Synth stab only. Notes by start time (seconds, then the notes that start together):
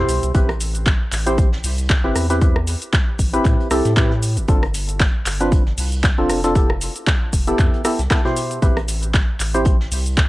Already playing: B2 E4 G4 C5
0.34 C4 E4 G4 B4
1.26 C4 E4 G4 C5
2.04 C4 E4 G4 B4
2.30 C4 E4 G4 B4
2.41 C4 E4 B4
3.33 C4 E4 G4 B4
3.71 C4 E4 G4 A4
3.97 C4 E4 G4 B4
4.48 C4 D4 F4 A4
5.40 C4 D4 F4 B4
6.18 C4 D4 F4 A4
6.44 C4 D4 F4 A4
6.55 B3 E4 G4 A4
7.47 B3 E4 G4 A4
7.85 B3 E4 G4 A4
8.11 B3 E4 G4 A4
8.25 B2 E4 G4 C5
8.62 C4 E4 G4 B4
9.54 C4 E4 G4 C5